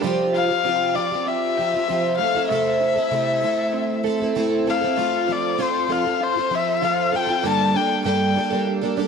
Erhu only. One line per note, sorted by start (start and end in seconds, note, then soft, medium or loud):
0.36 0.97 F5 loud
0.95 1.28 D5 medium
1.26 2.17 E5 medium
2.18 2.47 F5 medium
2.49 4.31 E5 medium
4.70 5.33 F5 medium
5.32 5.63 D5 medium
5.61 5.93 C5 medium
5.92 6.25 F5 medium
6.23 6.56 C5 medium
6.54 6.86 E5 medium
6.85 7.17 F5 medium
7.15 7.47 G5 medium
7.46 7.77 A5 loud
7.76 8.05 G5 loud
8.06 8.63 G5 medium